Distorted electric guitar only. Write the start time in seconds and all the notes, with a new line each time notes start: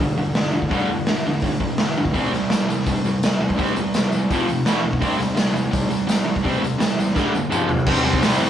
0.00 G2 D3
0.18 G2 D3
0.35 G2 D3
0.52 G2 D3
0.69 G2 D3 G3
0.90 G2 D3
1.07 G2 D3
1.26 G2 D3
1.43 G2 D3
1.60 G2 D3
1.79 G2 D3
1.97 G2 D3
2.14 C3 G3 C4
2.32 C3 G3
2.51 C3 G3
2.69 C3 G3
2.88 C3 G3
3.05 C3 G3
3.24 C3 G3
3.41 C3 G3
3.56 C3 G3 C4
3.77 C3 G3
3.96 C3 G3
4.14 C3 G3
4.30 F2 C3 F3
4.49 F2 C3
4.65 E2 B2 E3
4.83 E2 B2
5.01 C3 G3 C4
5.18 C3 G3
5.34 C3 G3
5.54 C3 G3
5.71 C3 G3
5.89 C3 G3
6.07 C3 G3
6.24 C3 G3
6.43 C3 G3 C4
6.62 C3 G3
6.79 C3 G3
6.99 C3 G3
7.14 G2 D3 G3
7.34 G2 D3
7.50 F2 C3 F3
7.69 F2 C3
7.87 C3 G3 C4
8.04 C3 G3 C4
8.23 C3 G3 C4
8.39 C3 G3 C4